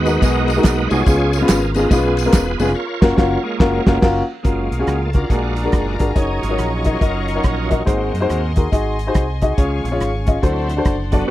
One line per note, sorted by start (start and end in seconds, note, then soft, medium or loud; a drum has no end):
0.00 0.16 D#2 loud
0.00 1.03 G#3 medium
0.00 0.63 B3 medium
0.00 0.22 D#4 medium
0.00 0.22 F#4 medium
0.00 0.23 B4 loud
0.05 0.15 G#3 medium
0.05 0.15 B3 medium
0.05 0.15 D#4 medium
0.05 0.15 F#4 medium
0.05 0.15 A#4 medium
0.05 ride medium
0.05 tambourine medium
0.22 0.58 B1 loud
0.22 0.44 G#3 medium
0.22 0.44 B3 medium
0.22 0.44 D#4 medium
0.22 1.03 D#4 medium
0.22 0.44 F#4 medium
0.22 0.64 F#4 medium
0.22 0.44 G#4 medium
0.22 0.61 A#4 loud
0.22 kick loud
0.22 ride medium
0.22 tambourine medium
0.48 ride medium
0.48 tambourine medium
0.56 0.73 G#3 medium
0.56 0.73 B3 medium
0.56 0.73 D#4 medium
0.56 0.73 F#4 medium
0.56 0.73 A#4 medium
0.63 0.87 B1 medium
0.63 0.88 A#3 soft
0.63 0.88 B3 soft
0.63 0.89 F#4 medium
0.63 0.91 B4 medium
0.63 kick loud
0.63 snare loud
0.63 clap loud
0.63 ride medium
0.63 tambourine loud
0.89 1.05 C2 loud
0.89 1.00 G#3 medium
0.89 1.00 B3 medium
0.89 1.00 D#4 medium
0.89 1.38 F4 medium
0.89 1.00 F#4 medium
0.89 1.71 G#4 medium
0.89 1.00 G#4 medium
0.89 1.42 C#5 loud
0.89 ride medium
0.89 tambourine medium
1.06 1.43 C#2 loud
1.06 1.72 C#3 medium
1.06 1.29 G#3 medium
1.06 1.29 B3 medium
1.06 1.29 C#4 medium
1.06 1.29 F4 medium
1.06 1.29 G#4 medium
1.06 kick loud
1.06 ride medium
1.06 tambourine medium
1.33 ride medium
1.33 tambourine medium
1.38 1.57 G#3 medium
1.38 1.58 B3 medium
1.38 1.75 F4 medium
1.38 1.91 A#4 medium
1.42 1.58 C#4 medium
1.42 1.58 F4 medium
1.42 1.58 B4 loud
1.48 1.85 G#1 loud
1.48 snare loud
1.48 clap loud
1.48 ride medium
1.48 tambourine loud
1.74 1.84 G#3 medium
1.74 1.90 B3 medium
1.74 1.84 B3 medium
1.74 1.84 C#4 medium
1.74 2.00 D#4 medium
1.74 1.90 F4 medium
1.74 1.85 F4 medium
1.74 1.85 G#4 medium
1.74 ride medium
1.74 tambourine medium
1.90 2.27 B1 medium
1.90 2.13 G#3 medium
1.90 2.13 B3 medium
1.90 2.72 B3 medium
1.90 2.13 C#4 medium
1.90 2.32 F4 medium
1.90 2.13 F4 medium
1.90 2.32 G#4 medium
1.90 2.13 B4 medium
1.90 kick loud
1.90 ride medium
1.90 tambourine medium
2.17 snare soft
2.17 ride medium
2.17 tambourine medium
2.25 2.42 G#3 medium
2.25 2.42 B3 medium
2.25 2.42 C#4 medium
2.25 2.42 F4 medium
2.25 2.42 A#4 medium
2.32 2.56 E1 medium
2.32 2.72 F4 medium
2.32 2.73 G#4 medium
2.32 2.76 B4 medium
2.32 kick loud
2.32 snare loud
2.32 clap medium
2.32 ride medium
2.32 tambourine loud
2.59 2.73 F1 loud
2.59 2.69 G#3 medium
2.59 2.69 B3 medium
2.59 2.69 C#4 medium
2.59 2.69 F4 medium
2.59 2.69 G#4 medium
2.59 ride medium
2.59 tambourine medium
2.67 snare soft
2.74 3.43 F4 medium
2.74 3.98 A#4 medium
2.74 3.98 C#5 medium
3.01 3.13 F#1 loud
3.01 3.13 A#3 loud
3.01 3.13 C#4 loud
3.01 3.13 F4 loud
3.01 3.13 F#4 loud
3.01 3.13 A#4 loud
3.01 kick loud
3.01 snare loud
3.01 crash medium
3.17 3.36 F#1 loud
3.17 3.35 A#3 loud
3.17 3.35 C#4 loud
3.17 3.36 F4 loud
3.17 3.36 F#4 loud
3.17 3.36 A#4 loud
3.17 kick loud
3.17 snare loud
3.43 3.99 G#3 medium
3.43 3.99 A#3 medium
3.43 3.99 F4 medium
3.60 3.78 F#1 loud
3.60 3.78 A#3 loud
3.60 3.78 C#4 loud
3.60 3.78 F4 loud
3.60 3.78 F#4 loud
3.60 3.79 A#4 loud
3.60 kick loud
3.60 snare loud
3.87 3.98 F#1 loud
3.87 3.98 A#3 medium
3.87 3.98 C#4 loud
3.87 3.98 F4 loud
3.87 3.98 F#4 loud
3.87 3.98 A#4 loud
3.87 kick loud
3.87 snare loud
4.01 4.21 F#1 loud
4.01 4.20 A#3 loud
4.01 4.20 C#4 loud
4.01 4.20 F4 loud
4.01 4.21 F#4 loud
4.01 4.21 A#4 loud
4.01 kick loud
4.01 snare loud
4.01 crash medium
4.43 4.68 F#1 medium
4.43 5.10 G#3 soft
4.43 5.10 A#3 soft
4.43 4.66 C#4 medium
4.43 5.10 F4 medium
4.43 4.67 F4 medium
4.43 4.67 F#4 medium
4.43 4.67 A#4 medium
4.43 5.29 C#5 medium
4.43 5.29 F5 medium
4.43 7.83 A#5 medium
4.43 kick loud
4.43 closed hi-hat medium
4.71 4.85 B1 medium
4.71 closed hi-hat medium
4.79 4.96 C#4 medium
4.79 4.96 F4 medium
4.79 4.96 F#4 medium
4.79 4.97 G#4 medium
4.87 5.24 C#2 medium
4.87 cross-stick medium
4.87 closed hi-hat medium
5.05 5.14 A4 medium
5.13 5.23 C#4 medium
5.13 5.28 D4 medium
5.13 5.23 F4 soft
5.13 6.12 F4 medium
5.13 5.23 F#4 medium
5.13 5.23 A#4 medium
5.13 6.19 A#4 loud
5.13 kick medium
5.13 closed hi-hat medium
5.29 5.66 A#1 medium
5.29 5.96 A#2 medium
5.29 5.96 G#3 medium
5.29 5.96 D4 soft
5.29 5.52 D4 medium
5.29 5.52 F#4 medium
5.29 5.96 F#4 medium
5.29 5.53 G#4 medium
5.29 5.53 A#4 medium
5.29 6.15 D5 medium
5.29 6.14 G#5 medium
5.29 kick medium
5.29 closed hi-hat medium
5.56 cross-stick soft
5.56 closed hi-hat medium
5.64 5.81 D4 medium
5.64 5.81 F#4 medium
5.64 5.81 G#4 medium
5.64 5.82 A#4 medium
5.72 5.96 F#1 medium
5.72 kick loud
5.72 cross-stick loud
5.72 closed hi-hat medium
5.99 6.14 G#1 medium
5.99 6.08 D4 medium
5.99 6.08 F#4 medium
5.99 6.09 G#4 medium
5.99 6.09 A#4 medium
5.99 kick medium
5.99 closed hi-hat medium
6.15 6.39 F#1 medium
6.15 6.41 C#4 medium
6.15 6.37 D#4 medium
6.15 6.98 D#4 medium
6.15 6.38 F#4 medium
6.15 7.04 G#4 medium
6.15 6.38 A#4 medium
6.15 6.38 C#5 medium
6.15 7.85 D#5 medium
6.15 7.85 C#6 medium
6.15 kick loud
6.15 closed hi-hat medium
6.41 6.56 G#1 medium
6.41 7.82 F#3 medium
6.41 7.00 C#4 soft
6.41 7.83 F4 medium
6.41 closed hi-hat medium
6.49 6.67 D#4 medium
6.49 6.67 F#4 medium
6.49 6.67 A#4 medium
6.49 6.67 C#5 medium
6.58 6.95 A#1 medium
6.58 cross-stick medium
6.58 closed hi-hat medium
6.84 6.94 D#4 medium
6.84 6.94 F#4 medium
6.84 6.94 A#4 medium
6.84 6.94 D#5 medium
6.84 kick medium
6.84 closed hi-hat medium
6.99 7.38 F#1 medium
6.99 7.83 C#4 medium
6.99 7.22 D#4 medium
6.99 7.83 D#4 medium
6.99 7.23 F#4 medium
6.99 7.23 A#4 medium
6.99 7.67 A#4 medium
6.99 7.23 D#5 medium
6.99 kick medium
6.99 closed hi-hat medium
7.28 cross-stick soft
7.28 closed hi-hat medium
7.35 7.52 D#4 medium
7.35 7.52 F#4 medium
7.35 7.52 A#4 medium
7.35 7.53 C#5 medium
7.44 7.81 A#1 medium
7.44 kick medium
7.44 cross-stick medium
7.44 closed hi-hat medium
7.70 7.79 D#4 medium
7.70 7.79 F#4 medium
7.70 7.79 A#4 medium
7.70 7.80 D#5 medium
7.70 kick medium
7.70 closed hi-hat medium
7.85 8.10 G#1 loud
7.85 8.52 G#2 medium
7.85 8.53 A#3 medium
7.85 8.53 C4 soft
7.85 8.08 D#4 medium
7.85 8.08 F#4 medium
7.85 8.53 F#4 medium
7.85 8.09 G#4 medium
7.85 8.09 C5 medium
7.85 9.57 D#5 medium
7.85 10.41 G#5 medium
7.85 9.56 C6 medium
7.85 kick loud
7.85 closed hi-hat medium
8.14 8.27 F#2 medium
8.14 closed hi-hat medium
8.21 8.38 D#4 medium
8.21 8.38 F#4 medium
8.21 8.38 G#4 medium
8.21 8.38 C5 medium
8.30 8.66 D#2 medium
8.30 cross-stick medium
8.30 closed hi-hat medium
8.56 8.65 D#4 medium
8.56 8.65 F#4 medium
8.56 8.66 G#4 medium
8.56 8.66 A#4 medium
8.56 kick medium
8.56 closed hi-hat medium
8.72 9.09 G#1 medium
8.72 8.94 D#4 medium
8.72 8.94 F#4 medium
8.72 8.95 G#4 medium
8.72 8.95 D#5 medium
8.72 kick medium
8.72 closed hi-hat medium
8.99 closed hi-hat medium
9.07 9.24 D#4 medium
9.07 9.24 F#4 medium
9.07 9.24 G#4 medium
9.07 9.24 C5 medium
9.14 9.52 C2 medium
9.14 kick loud
9.14 cross-stick loud
9.14 closed hi-hat medium
9.41 9.51 D#4 medium
9.41 9.51 F#4 medium
9.41 9.51 G#4 medium
9.41 9.51 D#5 medium
9.41 kick medium
9.41 closed hi-hat medium
9.57 9.81 C#2 loud
9.57 10.23 C#3 medium
9.57 9.89 G#3 medium
9.57 9.80 C#4 medium
9.57 9.89 C#4 soft
9.57 9.80 F4 medium
9.57 9.89 F4 medium
9.57 9.80 G#4 medium
9.57 10.42 C#5 medium
9.57 9.80 C#5 medium
9.57 10.42 F5 medium
9.57 10.42 C#6 medium
9.57 kick loud
9.57 closed hi-hat medium
9.84 9.98 A#1 medium
9.84 closed hi-hat medium
9.91 10.09 C#4 medium
9.91 10.09 F4 medium
9.91 10.09 G#4 medium
9.91 10.09 C#5 medium
10.01 10.37 G#1 medium
10.01 cross-stick medium
10.01 closed hi-hat medium
10.26 10.35 C#4 medium
10.26 10.36 F4 medium
10.26 10.36 G#4 medium
10.26 10.36 D#5 medium
10.26 kick medium
10.26 closed hi-hat medium
10.42 10.79 D2 medium
10.42 11.08 D3 medium
10.42 10.74 F#3 soft
10.42 10.75 C4 soft
10.42 10.65 D4 medium
10.42 10.74 E4 medium
10.42 10.65 F#4 medium
10.42 10.65 A4 medium
10.42 10.65 C5 medium
10.42 11.28 D5 medium
10.42 11.28 F#5 medium
10.42 11.28 A5 medium
10.42 11.28 C6 medium
10.42 kick medium
10.42 closed hi-hat medium
10.69 cross-stick soft
10.69 closed hi-hat medium
10.77 10.94 D4 medium
10.77 10.94 F#4 medium
10.77 10.94 A4 medium
10.77 10.95 C5 medium
10.85 11.22 F#1 medium
10.85 kick medium
10.85 cross-stick medium
10.85 closed hi-hat medium
11.12 11.30 F#3 medium
11.12 11.27 B3 medium
11.12 11.21 D4 medium
11.12 11.30 D4 loud
11.12 11.21 F#4 medium
11.12 11.21 A4 medium
11.12 11.22 D5 medium
11.12 kick medium
11.12 closed hi-hat medium
11.20 cross-stick soft
11.27 11.30 B3 medium
11.27 11.30 D4 medium